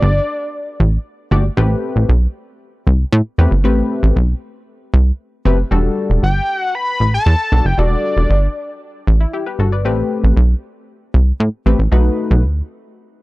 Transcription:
Already playing: analog synth lead D5
0.02 analog synth bass G1
0.80 analog synth bass A1
1.31 analog synth bass G1, analog polysynth A3 F#4 G4 D5
1.57 analog synth bass A1, analog polysynth A3 C4 G4 B4
1.96 analog synth bass A1
2.09 analog synth bass B1
2.87 analog synth bass C2
3.12 analog synth bass A2
3.38 analog synth bass E2, analog polysynth A3 C4 G4 B4
3.51 analog synth bass G1
3.64 analog synth bass A1, analog polysynth A3 C4 G4 B4
4.03 analog synth bass A1
4.16 analog synth bass B1
4.94 analog synth bass C2
5.45 analog synth bass F#1, analog polysynth A3 C4 G4 B4
5.71 analog synth bass E1, analog polysynth G3 D4 F#4 A4
6.10 analog synth bass E1
6.23 analog synth bass G1, analog synth lead G5
6.58 analog synth lead F#5
6.75 analog synth lead B5
7.00 analog synth bass A1
7.14 analog synth lead A5
7.26 analog synth bass E2
7.52 analog synth bass B1, analog polysynth G3 D4 F#4 A4
7.65 analog synth bass F#1, analog synth lead G5
7.78 analog synth bass E1, analog polysynth G3 D4 F#4 A4, analog synth lead D5
8.17 analog synth bass E1
8.30 analog synth bass G1
9.07 analog synth bass A1
9.20 analog polysynth E4
9.33 analog polysynth E4 G4
9.46 analog polysynth G4 B4
9.59 analog synth bass G1, analog polysynth F#4 A4
9.72 analog polysynth B4 D5
9.85 analog synth bass A1, analog polysynth A3 C4 G4 B4
10.24 analog synth bass A1
10.37 analog synth bass B1
11.14 analog synth bass C2
11.40 analog synth bass A2
11.66 analog synth bass A1, analog polysynth A3 C4 G4 B4
11.79 analog synth bass A1
11.92 analog synth bass B1, analog polysynth A3 D#4 F#4 B4
12.31 analog synth bass B1
12.44 analog synth bass D2

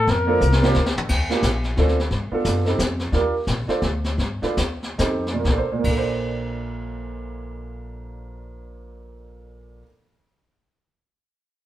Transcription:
Already playing: trumpet A4
0.07 upright bass F2, trumpet A#4, brush sweep, kick, snare
0.27 grand piano A#3 C4 D4 F4 A4
0.41 upright bass C2, hi-hat pedal
0.52 snare
0.62 grand piano A#3 C4 D4 F4 G4, snare
0.74 upright bass D2, snare
0.86 snare
0.96 muted upright bass stroke, floor tom
1.09 upright bass D#2, brush sweep, kick, snare, crash
1.30 grand piano A#3 D4 F4 G4, snare
1.43 upright bass A#1, kick, snare, hi-hat pedal
1.64 snare
1.77 upright bass D2, grand piano C4 D4 F4 A4, kick, snare
1.88 snare
1.99 snare
2.10 upright bass G2, brush sweep, kick, snare
2.31 grand piano B3 D4 F4 A4, muted upright bass stroke
2.45 upright bass F#2, kick, snare, hi-hat pedal
2.65 grand piano C4 D#4 G4 A4, snare
2.79 upright bass F2, kick, snare, hi-hat pedal
2.99 snare
3.12 upright bass D#2, grand piano D4 F4 G4 A#4, brush sweep, kick, snare
3.47 upright bass A#1, kick, snare, hi-hat pedal
3.68 grand piano D4 F4 A4 C5, muted upright bass stroke, snare
3.82 upright bass D2, kick, snare
4.04 snare
4.18 upright bass G2, brush sweep, kick, snare
4.42 grand piano D4 F4 A4 B4, muted upright bass stroke, snare
4.57 upright bass D#2, kick, snare, hi-hat pedal
4.83 snare
4.98 upright bass F2, grand piano D#4 G4 A4 C5, kick, snare, hi-hat pedal
5.26 snare
5.33 grand piano A#2
5.39 grand piano A#3
5.44 upright bass A#1, grand piano D4, kick, snare
5.52 grand piano A4
5.58 grand piano C5
5.72 grand piano A#2
5.79 grand piano A#3
5.84 upright bass A#1, grand piano D4, kick, crash
5.91 grand piano A4
5.98 grand piano C5

